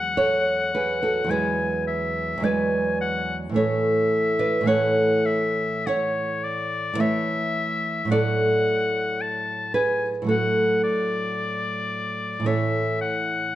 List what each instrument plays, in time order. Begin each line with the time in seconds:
Already playing: nylon-string guitar E2 F#3 G#3 B4 D5, oboe F#5
0.17 nylon-string guitar A4 C#5
0.75 nylon-string guitar G#4 B4
1.03 nylon-string guitar F#4 A4
1.24 nylon-string guitar E2 F#3
1.29 nylon-string guitar G#3 G#4 B4, oboe G#5
1.87 oboe E5
2.38 nylon-string guitar E2 F#3
2.42 nylon-string guitar G#3 B4 D5, oboe G#5
3.01 oboe F#5
3.49 nylon-string guitar A2 E3
3.54 nylon-string guitar A3 A4 C#5, oboe E5
4.39 nylon-string guitar B4 D5
4.61 nylon-string guitar A2 E3
4.65 nylon-string guitar A3 A4 C#5, oboe F#5
5.26 oboe E5
5.87 oboe C#5, nylon-string guitar C#5 F#5
6.44 oboe D5
6.94 nylon-string guitar A2 E3
6.98 nylon-string guitar A3 C#5 E5, oboe E5
8.05 nylon-string guitar A2 F#3
8.10 nylon-string guitar A3 A4 D5, oboe F#5
9.21 oboe A5
9.74 nylon-string guitar G#4 B4, oboe G#5
10.22 nylon-string guitar A2 F#3
10.26 nylon-string guitar A3 F#4 A4, oboe F#5
10.84 oboe D5
12.40 nylon-string guitar A2 E3
12.44 nylon-string guitar A3 A4 C#5, oboe E5
13.01 oboe F#5